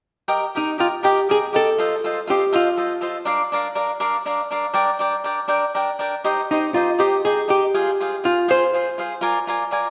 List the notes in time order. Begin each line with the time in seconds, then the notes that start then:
0.28 G4 A#4 D#5 G5
0.55 D#4 G4 A#4 D#5 G5
0.78 F4 G4 A#4 D#5 G5
1.03 G4 A#4 D#5 G5
1.29 G4 G#4 A#4 D#5 G5
1.53 G4 A4 A#4 D#5 G5
1.78 F4 A4 C5 D#5
2.04 F4 A4 C5 D#5
2.27 F4 G4 A4 C5 D#5
2.52 F4 A4 C5 D#5
2.76 F4 A4 C5 D#5
3.01 F4 A4 C5 D#5
3.25 D4 A#4 D5 F5
3.52 D4 A#4 D5 F5
3.75 D4 A#4 D5 F5
4.00 D4 A#4 D5 F5
4.26 D4 A#4 D5 F5
4.51 D4 A#4 D5 F5
4.73 D4 A#4 D5 G5
4.99 D4 A#4 D5 G5
5.24 D4 A#4 D5 G5
5.48 D4 A#4 D5 G5
5.75 D4 A#4 D5 G5
5.99 D4 A#4 D5 G5
6.24 D#4 G4 C5 D#5
6.51 D#4 G4 C5 D#5
6.74 D#4 F4 G4 C5 D#5
6.98 D#4 G4 C5 D#5
7.25 D#4 G4 G#4 C5 D#5
7.48 D#4 G4 C5 D#5
7.74 F4 G#4 C5 F5
8.00 F4 G#4 C5 F5
8.24 F4 G#4 C5 F5
8.48 F4 G#4 C5 F5
8.73 F4 G#4 C5 F5
8.98 F4 G#4 C5 F5
9.21 F4 A#4 D5 G#5
9.47 F4 A#4 D5 G#5
9.71 F4 A#4 D5 G#5